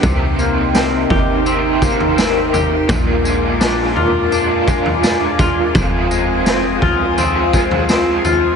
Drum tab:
TB |x-x-x---x-x-x-x-|x-x-x---x-x-x-x-|x-x-x---x-x-x-x-|
SD |----o-------o---|----o-------o---|----o-------o---|
FT |o-----o----o--o-|o-----o----o--o-|o-----o-o--o--o-|
BD |o-----o---o-----|o---------o---o-|o-----o---o-----|